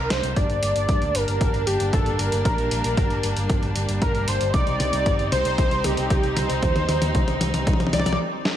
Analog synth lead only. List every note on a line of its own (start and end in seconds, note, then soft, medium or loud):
0.00 0.12 A#4 loud
0.10 0.38 C5 loud
0.36 1.16 D5 loud
1.15 1.66 A#4 loud
1.67 1.94 G4 loud
1.93 2.21 A4 loud
2.19 2.44 A#4 medium
2.45 2.69 A#4 loud
2.71 3.72 A#4 loud
4.02 4.29 A#4 loud
4.28 4.53 C5 loud
4.54 5.28 D5 loud
5.32 5.86 C5 loud
5.84 6.38 G4 loud
6.37 7.41 C5 loud
7.93 8.17 D5 loud